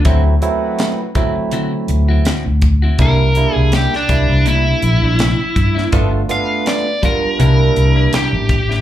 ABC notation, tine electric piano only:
X:1
M:4/4
L:1/16
Q:"Swing 16ths" 1/4=82
K:C
V:1 name="Tine electric piano"
[^F,A,CE]2 [F,A,CE]3 z [F,A,CE]6 z4 | [G,_B,DE]2 [G,B,DE]3 z [G,B,DE]6 z4 | [A,B,DF]2 [A,B,DF]3 z [G,B,DF]2 [G,_B,DE]6 z2 |]